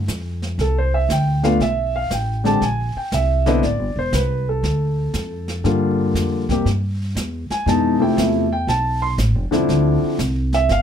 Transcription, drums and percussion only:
0.08 snare soft
0.08 hi-hat pedal soft
0.42 snare soft
0.59 brush sweep soft
0.59 snare soft
1.10 snare soft
1.10 hi-hat pedal soft
1.44 snare soft
1.60 brush sweep soft
1.60 snare soft
2.11 snare soft
2.11 hi-hat pedal soft
2.45 snare soft
2.62 brush sweep soft
2.62 snare soft
3.12 snare soft
3.12 hi-hat pedal soft
3.46 snare soft
3.63 brush sweep soft
3.63 snare soft
4.13 snare soft
4.13 hi-hat pedal soft
4.63 brush sweep soft
4.63 snare soft
5.14 snare soft
5.14 hi-hat pedal soft
5.48 snare soft
5.65 brush sweep soft
5.65 snare soft
6.15 snare soft
6.15 hi-hat pedal soft
6.49 kick medium
6.49 snare soft
6.66 brush sweep soft
6.66 snare soft
7.17 snare soft
7.17 hi-hat pedal soft
7.50 snare soft
7.67 brush sweep soft
7.67 snare soft
8.18 snare soft
8.18 hi-hat pedal soft
8.68 brush sweep soft
8.68 snare soft
9.18 snare medium
9.18 hi-hat pedal medium
9.52 snare soft
9.69 brush sweep soft
9.69 snare soft
10.19 snare soft
10.19 hi-hat pedal soft
10.53 snare soft
10.69 brush sweep soft
10.69 snare soft

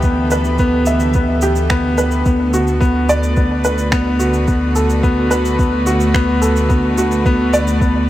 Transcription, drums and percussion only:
0.02 kick medium
0.02 shaker soft
0.31 shaker medium
0.44 shaker soft
0.58 kick loud
0.58 shaker soft
0.86 shaker medium
1.00 shaker soft
1.14 kick loud
1.14 shaker soft
1.41 shaker medium
1.56 shaker soft
1.70 finger snap medium
1.70 kick medium
1.70 shaker soft
1.98 shaker medium
2.11 shaker soft
2.26 kick loud
2.26 shaker soft
2.53 shaker medium
2.67 shaker soft
2.81 kick loud
2.81 shaker soft
3.09 shaker medium
3.23 shaker soft
3.37 kick loud
3.37 shaker soft
3.64 shaker medium
3.78 shaker soft
3.92 finger snap medium
3.92 kick loud
3.92 shaker soft
4.20 shaker medium
4.34 shaker soft
4.48 kick loud
4.48 shaker soft
4.76 shaker medium
4.90 shaker soft
5.04 kick loud
5.04 shaker soft
5.31 shaker medium
5.45 shaker soft
5.59 kick loud
5.59 shaker soft
5.87 shaker medium
6.00 shaker soft
6.15 finger snap medium
6.15 kick loud
6.15 shaker soft
6.42 shaker medium
6.56 shaker soft
6.70 kick loud
6.70 shaker soft
6.98 shaker medium
7.12 shaker soft
7.26 kick loud
7.26 shaker soft
7.53 shaker medium
7.67 shaker soft
7.81 kick loud
7.81 shaker soft

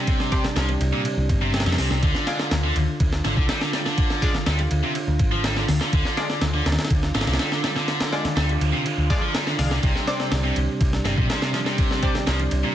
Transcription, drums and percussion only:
0.07 kick loud
0.07 ride medium
0.20 snare soft
0.32 kick medium
0.32 ride medium
0.44 snare medium
0.56 snare loud
0.56 ride medium
0.69 ride soft
0.81 ride medium
1.05 ride medium
1.29 kick loud
1.29 ride medium
1.54 snare medium
1.54 ride medium
1.60 snare medium
1.60 ride medium
1.66 snare medium
1.66 ride medium
1.72 snare medium
1.72 ride medium
1.78 snare soft
1.78 open hi-hat medium
1.91 snare medium
2.03 kick loud
2.03 ride medium
2.15 snare soft
2.27 snare soft
2.27 ride medium
2.39 snare medium
2.51 snare loud
2.51 ride medium
2.76 ride medium
3.00 kick loud
3.00 ride medium
3.13 snare soft
3.25 snare soft
3.25 ride medium
3.37 kick loud
3.49 snare loud
3.49 ride medium
3.61 snare medium
3.73 snare medium
3.73 ride medium
3.86 snare medium
3.98 kick loud
3.98 ride medium
4.10 snare soft
4.22 kick loud
4.22 ride medium
4.34 snare medium
4.46 snare loud
4.46 ride medium
4.59 ride soft
4.71 ride medium
4.95 ride medium
5.19 kick loud
5.19 ride medium
5.44 snare loud
5.44 ride medium
5.57 snare soft
5.68 snare soft
5.68 open hi-hat medium
5.81 snare medium
5.93 kick loud
5.93 ride loud
6.05 snare soft
6.17 snare soft
6.17 ride medium
6.30 snare medium
6.42 snare loud
6.42 ride medium
6.66 snare medium
6.66 ride medium
6.72 snare medium
6.72 ride medium
6.79 snare medium
6.79 ride medium
6.85 snare medium
6.85 ride medium
6.90 kick loud
6.90 ride medium
7.03 snare soft
7.15 snare medium
7.15 ride medium
7.21 snare medium
7.21 ride medium
7.27 snare medium
7.27 ride medium
7.33 snare medium
7.33 ride medium
7.39 snare loud
7.39 ride medium
7.52 snare medium
7.64 snare loud
7.64 ride medium
7.76 snare medium
7.88 snare medium
7.88 ride medium
8.00 snare loud
8.00 ride medium
8.13 snare medium
8.25 snare medium
8.25 ride medium
8.37 snare loud
8.37 ride medium
8.49 ride soft
8.61 ride medium
8.86 ride medium
9.10 kick loud
9.10 ride medium
9.34 snare loud
9.34 ride medium
9.47 snare soft
9.59 snare soft
9.59 open hi-hat medium
9.71 snare medium
9.83 kick loud
9.83 ride loud
9.95 snare soft
10.07 snare soft
10.07 ride medium
10.20 snare soft
10.32 snare loud
10.32 ride medium
10.56 ride medium
10.81 kick loud
10.81 ride medium
10.93 snare soft
11.05 snare soft
11.05 ride medium
11.18 kick loud
11.30 snare loud
11.30 ride medium
11.42 snare medium
11.54 snare medium
11.54 ride medium
11.66 snare medium
11.78 kick loud
11.78 ride medium
11.91 snare soft
12.03 kick medium
12.03 ride medium
12.15 snare medium
12.27 snare loud
12.27 ride medium
12.39 ride soft
12.51 ride medium

